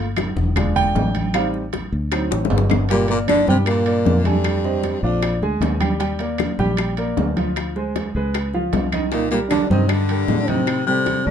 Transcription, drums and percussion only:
0.17 high bongo medium
0.17 high conga loud
0.17 high timbale medium
0.17 low timbale medium
0.17 claves medium
0.37 high conga loud
0.56 high bongo medium
0.56 high conga soft
0.56 low conga medium
0.56 high timbale medium
0.56 claves medium
0.75 high bongo soft
0.75 high conga soft
0.75 low conga medium
0.75 high timbale medium
0.95 high bongo soft
0.95 low bongo medium
0.95 high conga medium
0.95 low timbale medium
1.15 high bongo soft
1.15 high conga medium
1.15 high timbale medium
1.34 high bongo medium
1.34 high conga soft
1.34 high timbale loud
1.34 claves medium
1.54 high bongo soft
1.54 high conga soft
1.73 high bongo medium
1.73 high conga medium
1.73 high timbale medium
1.73 low timbale medium
2.12 high bongo medium
2.12 high timbale loud
2.12 claves medium
2.31 high bongo medium
2.31 high conga soft
2.31 high timbale medium
2.45 low bongo medium
2.50 high conga medium
2.50 low timbale loud
2.58 low bongo medium
2.70 low bongo loud
2.70 high conga medium
2.70 low timbale medium
2.70 claves medium
2.89 high bongo medium
2.89 high conga soft
2.89 high timbale medium
3.08 high bongo soft
3.08 high conga soft
3.08 high timbale medium
3.28 high bongo medium
3.28 high conga loud
3.28 high timbale medium
3.28 low timbale medium
3.28 claves medium
3.48 high conga medium
3.66 high bongo medium
3.66 high conga soft
3.66 high timbale medium
3.66 claves medium
3.86 high bongo soft
3.86 high conga soft
3.86 high timbale medium
4.05 high bongo soft
4.05 low bongo medium
4.05 high conga medium
4.05 low timbale medium
4.24 high bongo soft
4.24 high conga medium
4.24 high timbale medium
4.44 high bongo medium
4.44 high conga soft
4.44 high timbale medium
4.44 claves medium
4.64 high bongo soft
4.64 high conga soft
4.83 high bongo medium
4.83 high conga medium
4.83 high timbale medium
4.83 low timbale medium
5.22 high bongo medium
5.22 high conga soft
5.22 high timbale medium
5.22 claves medium
5.42 high bongo soft
5.42 high conga soft
5.61 high bongo soft
5.61 low bongo medium
5.61 high conga medium
5.61 high timbale medium
5.61 low timbale medium
5.81 high bongo soft
5.81 high conga medium
5.81 high timbale medium
5.81 claves medium
6.00 high bongo medium
6.00 high conga soft
6.00 high timbale medium
6.19 high bongo soft
6.19 high conga soft
6.19 high timbale medium
6.38 high bongo medium
6.38 high conga medium
6.38 high timbale medium
6.38 low timbale medium
6.38 claves medium
6.59 high conga medium
6.77 high bongo medium
6.77 high conga soft
6.77 high timbale medium
6.77 claves medium
6.97 high bongo soft
6.97 high conga soft
6.97 high timbale medium
7.17 high bongo soft
7.17 low bongo medium
7.17 high conga medium
7.17 low timbale medium
7.37 high bongo soft
7.37 high conga medium
7.37 high timbale medium
7.56 high bongo medium
7.56 high conga soft
7.56 high timbale medium
7.56 claves medium
7.76 high bongo soft
7.76 high conga soft
7.96 high bongo medium
7.96 high conga medium
7.96 high timbale medium
7.96 low timbale medium
8.34 high bongo medium
8.34 high conga soft
8.34 high timbale medium
8.34 claves medium
8.54 high bongo soft
8.54 high conga soft
8.73 high bongo soft
8.73 low bongo medium
8.73 high conga medium
8.73 high timbale medium
8.73 low timbale medium
8.92 high bongo soft
8.92 high conga medium
8.92 high timbale medium
8.92 claves medium
9.12 high bongo medium
9.12 high conga soft
9.12 high timbale medium
9.31 high bongo soft
9.31 high conga soft
9.31 high timbale medium
9.51 high bongo medium
9.51 high conga loud
9.51 high timbale medium
9.51 low timbale medium
9.51 claves medium
9.71 high conga medium
9.89 high bongo medium
9.89 high conga soft
9.89 high timbale medium
9.89 claves medium
10.09 high bongo soft
10.09 high timbale medium
10.28 high bongo soft
10.28 low bongo medium
10.28 high conga medium
10.28 low timbale medium
10.48 high bongo soft
10.48 high conga medium
10.48 high timbale medium
10.67 high bongo medium
10.67 high conga soft
10.67 high timbale medium
10.67 claves medium
10.87 high bongo soft
10.87 high conga soft
11.06 high bongo medium
11.06 high conga medium
11.06 high timbale medium
11.06 low timbale medium

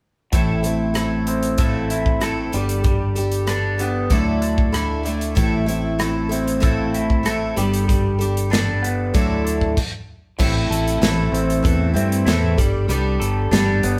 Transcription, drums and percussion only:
0.33 kick loud
0.33 closed hi-hat medium
0.64 closed hi-hat medium
0.95 cross-stick loud
0.95 closed hi-hat medium
1.27 closed hi-hat medium
1.43 closed hi-hat medium
1.58 kick loud
1.58 closed hi-hat medium
1.90 closed hi-hat medium
2.06 kick medium
2.21 cross-stick loud
2.21 closed hi-hat medium
2.53 closed hi-hat medium
2.69 closed hi-hat medium
2.84 kick loud
2.84 closed hi-hat medium
3.16 closed hi-hat medium
3.32 closed hi-hat medium
3.47 cross-stick loud
3.47 closed hi-hat medium
3.79 closed hi-hat medium
4.10 kick loud
4.10 closed hi-hat medium
4.42 closed hi-hat medium
4.58 kick medium
4.74 cross-stick loud
4.74 closed hi-hat medium
5.06 closed hi-hat medium
5.21 closed hi-hat medium
5.37 kick loud
5.37 closed hi-hat medium
5.68 closed hi-hat medium
5.99 cross-stick loud
5.99 closed hi-hat medium
6.32 closed hi-hat medium
6.47 closed hi-hat medium
6.63 kick loud
6.63 closed hi-hat medium
6.94 closed hi-hat medium
7.10 kick medium
7.25 cross-stick loud
7.25 closed hi-hat medium
7.57 closed hi-hat medium
7.73 closed hi-hat medium
7.89 kick loud
7.89 closed hi-hat medium
8.21 closed hi-hat medium
8.37 closed hi-hat medium
8.53 snare loud
8.53 closed hi-hat medium
8.84 closed hi-hat medium
9.15 kick loud
9.15 closed hi-hat medium
9.47 closed hi-hat medium
9.61 kick medium
9.77 kick medium
9.77 crash medium
10.40 kick medium
10.40 crash medium
10.72 closed hi-hat medium
10.87 closed hi-hat medium
11.03 snare loud
11.03 closed hi-hat medium
11.34 closed hi-hat medium
11.50 closed hi-hat medium
11.65 kick loud
11.65 closed hi-hat medium
11.96 closed hi-hat medium
12.12 closed hi-hat medium
12.28 snare loud
12.28 closed hi-hat medium
12.58 kick medium
12.58 closed hi-hat medium
12.90 closed hi-hat medium
13.22 closed hi-hat medium
13.53 snare loud
13.53 closed hi-hat medium
13.83 closed hi-hat medium

